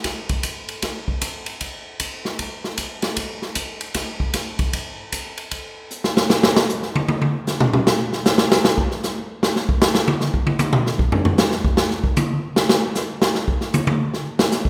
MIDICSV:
0, 0, Header, 1, 2, 480
1, 0, Start_track
1, 0, Tempo, 391134
1, 56, Time_signature, 4, 2, 24, 8
1, 18036, End_track
2, 0, Start_track
2, 0, Title_t, "Drums"
2, 50, Note_on_c, 9, 51, 66
2, 56, Note_on_c, 9, 38, 38
2, 58, Note_on_c, 9, 36, 26
2, 173, Note_off_c, 9, 51, 0
2, 179, Note_off_c, 9, 38, 0
2, 181, Note_off_c, 9, 36, 0
2, 359, Note_on_c, 9, 51, 52
2, 364, Note_on_c, 9, 36, 54
2, 482, Note_off_c, 9, 51, 0
2, 487, Note_off_c, 9, 36, 0
2, 531, Note_on_c, 9, 44, 61
2, 531, Note_on_c, 9, 51, 69
2, 538, Note_on_c, 9, 36, 22
2, 653, Note_off_c, 9, 44, 0
2, 653, Note_off_c, 9, 51, 0
2, 661, Note_off_c, 9, 36, 0
2, 841, Note_on_c, 9, 51, 47
2, 964, Note_off_c, 9, 51, 0
2, 1011, Note_on_c, 9, 51, 70
2, 1017, Note_on_c, 9, 38, 42
2, 1018, Note_on_c, 9, 36, 20
2, 1134, Note_off_c, 9, 51, 0
2, 1140, Note_off_c, 9, 38, 0
2, 1141, Note_off_c, 9, 36, 0
2, 1324, Note_on_c, 9, 36, 51
2, 1447, Note_off_c, 9, 36, 0
2, 1491, Note_on_c, 9, 44, 65
2, 1491, Note_on_c, 9, 51, 73
2, 1498, Note_on_c, 9, 36, 22
2, 1614, Note_off_c, 9, 44, 0
2, 1614, Note_off_c, 9, 51, 0
2, 1620, Note_off_c, 9, 36, 0
2, 1794, Note_on_c, 9, 51, 52
2, 1917, Note_off_c, 9, 51, 0
2, 1971, Note_on_c, 9, 51, 65
2, 1978, Note_on_c, 9, 36, 21
2, 2094, Note_off_c, 9, 51, 0
2, 2101, Note_off_c, 9, 36, 0
2, 2450, Note_on_c, 9, 44, 64
2, 2450, Note_on_c, 9, 51, 77
2, 2458, Note_on_c, 9, 36, 21
2, 2573, Note_off_c, 9, 44, 0
2, 2573, Note_off_c, 9, 51, 0
2, 2580, Note_off_c, 9, 36, 0
2, 2763, Note_on_c, 9, 38, 45
2, 2886, Note_off_c, 9, 38, 0
2, 2932, Note_on_c, 9, 51, 66
2, 2937, Note_on_c, 9, 36, 22
2, 3055, Note_off_c, 9, 51, 0
2, 3060, Note_off_c, 9, 36, 0
2, 3244, Note_on_c, 9, 38, 39
2, 3367, Note_off_c, 9, 38, 0
2, 3406, Note_on_c, 9, 44, 59
2, 3406, Note_on_c, 9, 51, 73
2, 3415, Note_on_c, 9, 36, 21
2, 3529, Note_off_c, 9, 44, 0
2, 3529, Note_off_c, 9, 51, 0
2, 3537, Note_off_c, 9, 36, 0
2, 3709, Note_on_c, 9, 51, 49
2, 3715, Note_on_c, 9, 38, 62
2, 3832, Note_off_c, 9, 51, 0
2, 3838, Note_off_c, 9, 38, 0
2, 3885, Note_on_c, 9, 51, 72
2, 3892, Note_on_c, 9, 36, 23
2, 4007, Note_off_c, 9, 51, 0
2, 4015, Note_off_c, 9, 36, 0
2, 4198, Note_on_c, 9, 38, 34
2, 4321, Note_off_c, 9, 38, 0
2, 4360, Note_on_c, 9, 44, 67
2, 4360, Note_on_c, 9, 51, 76
2, 4370, Note_on_c, 9, 36, 24
2, 4483, Note_off_c, 9, 44, 0
2, 4483, Note_off_c, 9, 51, 0
2, 4493, Note_off_c, 9, 36, 0
2, 4672, Note_on_c, 9, 51, 53
2, 4794, Note_off_c, 9, 51, 0
2, 4840, Note_on_c, 9, 51, 77
2, 4846, Note_on_c, 9, 38, 41
2, 4848, Note_on_c, 9, 36, 27
2, 4963, Note_off_c, 9, 51, 0
2, 4969, Note_off_c, 9, 38, 0
2, 4970, Note_off_c, 9, 36, 0
2, 5154, Note_on_c, 9, 36, 57
2, 5277, Note_off_c, 9, 36, 0
2, 5321, Note_on_c, 9, 44, 67
2, 5321, Note_on_c, 9, 51, 78
2, 5327, Note_on_c, 9, 38, 39
2, 5328, Note_on_c, 9, 36, 23
2, 5443, Note_off_c, 9, 44, 0
2, 5443, Note_off_c, 9, 51, 0
2, 5450, Note_off_c, 9, 38, 0
2, 5451, Note_off_c, 9, 36, 0
2, 5631, Note_on_c, 9, 51, 48
2, 5635, Note_on_c, 9, 36, 67
2, 5754, Note_off_c, 9, 51, 0
2, 5758, Note_off_c, 9, 36, 0
2, 5808, Note_on_c, 9, 51, 75
2, 5810, Note_on_c, 9, 36, 29
2, 5931, Note_off_c, 9, 51, 0
2, 5933, Note_off_c, 9, 36, 0
2, 6288, Note_on_c, 9, 44, 63
2, 6288, Note_on_c, 9, 51, 66
2, 6291, Note_on_c, 9, 36, 23
2, 6411, Note_off_c, 9, 44, 0
2, 6411, Note_off_c, 9, 51, 0
2, 6414, Note_off_c, 9, 36, 0
2, 6597, Note_on_c, 9, 51, 48
2, 6720, Note_off_c, 9, 51, 0
2, 6766, Note_on_c, 9, 51, 64
2, 6772, Note_on_c, 9, 36, 20
2, 6889, Note_off_c, 9, 51, 0
2, 6895, Note_off_c, 9, 36, 0
2, 7249, Note_on_c, 9, 44, 59
2, 7372, Note_off_c, 9, 44, 0
2, 7416, Note_on_c, 9, 38, 68
2, 7538, Note_off_c, 9, 38, 0
2, 7570, Note_on_c, 9, 38, 91
2, 7693, Note_off_c, 9, 38, 0
2, 7730, Note_on_c, 9, 38, 104
2, 7853, Note_off_c, 9, 38, 0
2, 7895, Note_on_c, 9, 38, 113
2, 8018, Note_off_c, 9, 38, 0
2, 8056, Note_on_c, 9, 38, 93
2, 8179, Note_off_c, 9, 38, 0
2, 8212, Note_on_c, 9, 44, 60
2, 8335, Note_off_c, 9, 44, 0
2, 8376, Note_on_c, 9, 38, 33
2, 8499, Note_off_c, 9, 38, 0
2, 8535, Note_on_c, 9, 48, 99
2, 8658, Note_off_c, 9, 48, 0
2, 8695, Note_on_c, 9, 48, 105
2, 8817, Note_off_c, 9, 48, 0
2, 8855, Note_on_c, 9, 48, 75
2, 8978, Note_off_c, 9, 48, 0
2, 9167, Note_on_c, 9, 44, 60
2, 9173, Note_on_c, 9, 38, 57
2, 9290, Note_off_c, 9, 44, 0
2, 9296, Note_off_c, 9, 38, 0
2, 9332, Note_on_c, 9, 47, 98
2, 9455, Note_off_c, 9, 47, 0
2, 9492, Note_on_c, 9, 47, 95
2, 9615, Note_off_c, 9, 47, 0
2, 9656, Note_on_c, 9, 38, 102
2, 9779, Note_off_c, 9, 38, 0
2, 9974, Note_on_c, 9, 38, 48
2, 10097, Note_off_c, 9, 38, 0
2, 10128, Note_on_c, 9, 44, 60
2, 10135, Note_on_c, 9, 38, 104
2, 10251, Note_off_c, 9, 44, 0
2, 10257, Note_off_c, 9, 38, 0
2, 10284, Note_on_c, 9, 38, 100
2, 10406, Note_off_c, 9, 38, 0
2, 10452, Note_on_c, 9, 38, 100
2, 10575, Note_off_c, 9, 38, 0
2, 10610, Note_on_c, 9, 38, 101
2, 10733, Note_off_c, 9, 38, 0
2, 10771, Note_on_c, 9, 36, 66
2, 10894, Note_off_c, 9, 36, 0
2, 10934, Note_on_c, 9, 38, 34
2, 11057, Note_off_c, 9, 38, 0
2, 11086, Note_on_c, 9, 44, 53
2, 11092, Note_on_c, 9, 38, 50
2, 11209, Note_off_c, 9, 44, 0
2, 11215, Note_off_c, 9, 38, 0
2, 11571, Note_on_c, 9, 38, 93
2, 11694, Note_off_c, 9, 38, 0
2, 11732, Note_on_c, 9, 38, 51
2, 11854, Note_off_c, 9, 38, 0
2, 11889, Note_on_c, 9, 36, 78
2, 12012, Note_off_c, 9, 36, 0
2, 12041, Note_on_c, 9, 44, 55
2, 12047, Note_on_c, 9, 38, 95
2, 12163, Note_off_c, 9, 44, 0
2, 12170, Note_off_c, 9, 38, 0
2, 12205, Note_on_c, 9, 38, 87
2, 12328, Note_off_c, 9, 38, 0
2, 12366, Note_on_c, 9, 48, 101
2, 12488, Note_off_c, 9, 48, 0
2, 12525, Note_on_c, 9, 38, 49
2, 12648, Note_off_c, 9, 38, 0
2, 12688, Note_on_c, 9, 36, 62
2, 12811, Note_off_c, 9, 36, 0
2, 12844, Note_on_c, 9, 48, 92
2, 12967, Note_off_c, 9, 48, 0
2, 12993, Note_on_c, 9, 44, 63
2, 12999, Note_on_c, 9, 48, 100
2, 13116, Note_off_c, 9, 44, 0
2, 13122, Note_off_c, 9, 48, 0
2, 13164, Note_on_c, 9, 47, 102
2, 13287, Note_off_c, 9, 47, 0
2, 13332, Note_on_c, 9, 38, 49
2, 13455, Note_off_c, 9, 38, 0
2, 13490, Note_on_c, 9, 36, 78
2, 13613, Note_off_c, 9, 36, 0
2, 13649, Note_on_c, 9, 43, 101
2, 13772, Note_off_c, 9, 43, 0
2, 13807, Note_on_c, 9, 43, 103
2, 13930, Note_off_c, 9, 43, 0
2, 13963, Note_on_c, 9, 44, 57
2, 13969, Note_on_c, 9, 38, 102
2, 14086, Note_off_c, 9, 44, 0
2, 14092, Note_off_c, 9, 38, 0
2, 14131, Note_on_c, 9, 38, 55
2, 14254, Note_off_c, 9, 38, 0
2, 14291, Note_on_c, 9, 36, 79
2, 14414, Note_off_c, 9, 36, 0
2, 14446, Note_on_c, 9, 38, 92
2, 14568, Note_off_c, 9, 38, 0
2, 14612, Note_on_c, 9, 38, 34
2, 14735, Note_off_c, 9, 38, 0
2, 14771, Note_on_c, 9, 36, 69
2, 14894, Note_off_c, 9, 36, 0
2, 14928, Note_on_c, 9, 44, 60
2, 14934, Note_on_c, 9, 48, 107
2, 15051, Note_off_c, 9, 44, 0
2, 15057, Note_off_c, 9, 48, 0
2, 15418, Note_on_c, 9, 38, 96
2, 15540, Note_off_c, 9, 38, 0
2, 15579, Note_on_c, 9, 38, 108
2, 15701, Note_off_c, 9, 38, 0
2, 15892, Note_on_c, 9, 44, 65
2, 15898, Note_on_c, 9, 38, 56
2, 16015, Note_off_c, 9, 44, 0
2, 16021, Note_off_c, 9, 38, 0
2, 16219, Note_on_c, 9, 38, 97
2, 16342, Note_off_c, 9, 38, 0
2, 16382, Note_on_c, 9, 38, 44
2, 16505, Note_off_c, 9, 38, 0
2, 16540, Note_on_c, 9, 36, 64
2, 16663, Note_off_c, 9, 36, 0
2, 16701, Note_on_c, 9, 38, 41
2, 16823, Note_off_c, 9, 38, 0
2, 16855, Note_on_c, 9, 44, 61
2, 16861, Note_on_c, 9, 48, 104
2, 16978, Note_off_c, 9, 44, 0
2, 16984, Note_off_c, 9, 48, 0
2, 17023, Note_on_c, 9, 48, 105
2, 17146, Note_off_c, 9, 48, 0
2, 17347, Note_on_c, 9, 38, 41
2, 17469, Note_off_c, 9, 38, 0
2, 17661, Note_on_c, 9, 38, 105
2, 17784, Note_off_c, 9, 38, 0
2, 17815, Note_on_c, 9, 44, 58
2, 17822, Note_on_c, 9, 38, 50
2, 17938, Note_off_c, 9, 44, 0
2, 17944, Note_off_c, 9, 38, 0
2, 17980, Note_on_c, 9, 36, 71
2, 18036, Note_off_c, 9, 36, 0
2, 18036, End_track
0, 0, End_of_file